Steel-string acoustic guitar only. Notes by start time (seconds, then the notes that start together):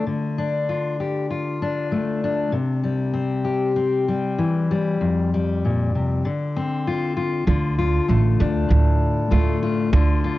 0.07 D3
0.38 D4
0.69 F4
1.00 G4
1.31 F4
1.62 D4
1.92 A3
2.24 D4
2.52 C3
2.84 G3
3.14 C4
3.44 G4
3.76 C4
4.08 G3
4.38 E3
4.71 G3
5.01 F2
5.34 G3
5.65 A#2
5.95 C3
6.25 D3
6.56 C4
6.87 F4
7.17 F4
7.47 D3 F4
7.78 F4
8.08 A3
8.40 D4
8.69 A2
9.31 A3 F4
9.63 F4
9.93 D3 F4
10.24 F4